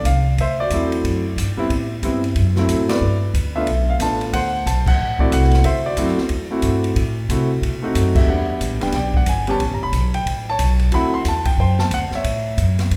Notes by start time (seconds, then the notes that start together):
0.04 C2 F5, kick, hi-hat pedal, ride
0.37 D2 C5 E5, kick, ride
0.60 F#4 D5
0.70 E2 F#3 A3 C4 E4, kick, hi-hat pedal, ride
0.92 ride
1.04 F#2, kick, ride
1.36 G2, kick, hi-hat pedal, ride
1.57 G3 B3 C4 E4, muted upright bass stroke
1.70 A2, kick, ride
2.02 G2 G3 B3 C4 E4, kick, hi-hat pedal, ride
2.24 ride
2.35 F#2, kick, ride
2.56 F#3 A3 C4 E4, snare
2.68 A2, kick, hi-hat pedal, ride
2.89 B4 D5, snare, ride
3.01 G2
3.34 D2, kick, hi-hat pedal, ride
3.56 A3 B3 D4 F4 E5
3.66 B1, kick, ride
3.90 F5
3.99 A1 A3 B3 D4 F4 A5, kick, hi-hat pedal, ride
4.21 ride
4.33 D2 C5 F#5, kick, ride
4.66 B1 A5, kick, hi-hat pedal, ride
4.86 F#5, kick, crash
4.98 A1
5.19 A3 C4 E4 F#4 D5, kick
5.31 C2 F#5, hi-hat pedal, ride
5.43 snare
5.51 snare, ride
5.64 D2 C5 E5, kick, ride
5.86 F#4 D5
5.97 F#2 A3 C4 E4 F#4, kick, hi-hat pedal, ride
6.08 snare
6.18 muted upright bass stroke, snare
6.29 E2, kick, ride
6.51 A3 C4 E4 F#4
6.62 G2, kick, hi-hat pedal, ride
6.84 ride
6.96 A2, kick, ride
7.29 C3 A3 C4 E4 F#4, kick, hi-hat pedal, ride
7.62 B2, kick, ride
7.82 A3 C4 D#4 F#4
7.95 F#2, kick, hi-hat pedal, ride
8.15 G4 E5, kick, crash
8.27 E2 G3 B3 D4 F#5
8.61 A1, kick, hi-hat pedal, ride
8.71 G1
8.81 E1 G3 B3 D4 G4 G5, snare, ride
8.92 B1 D5 G5, kick, snare, ride
9.14 F#5, kick
9.26 G1 G#5, hi-hat pedal, ride
9.47 G3 B3 C#4 G4 A5, ride
9.52 C#5
9.59 A1, kick, ride
9.71 G1 A#5
9.82 E1 B5
9.92 B1, kick, hi-hat pedal, ride
10.14 G5, ride
10.26 A1, kick, ride
10.50 C#5 A5
10.59 B1, kick, hi-hat pedal, ride
10.79 ride
10.91 D2 F#3 A3 C4 E4 F#5 B5, kick, ride
11.14 C6
11.25 E2 A5, kick, snare, hi-hat pedal, ride
11.45 G5, kick, ride
11.58 F#2 C5 G5, kick
11.79 A5, snare
11.91 D2 F#5, kick, hi-hat pedal, ride
12.11 muted upright bass stroke, snare
12.15 C#5 E5
12.24 A2, kick, ride
12.57 F#2, kick, hi-hat pedal, ride
12.79 snare, ride
12.91 G2, kick, ride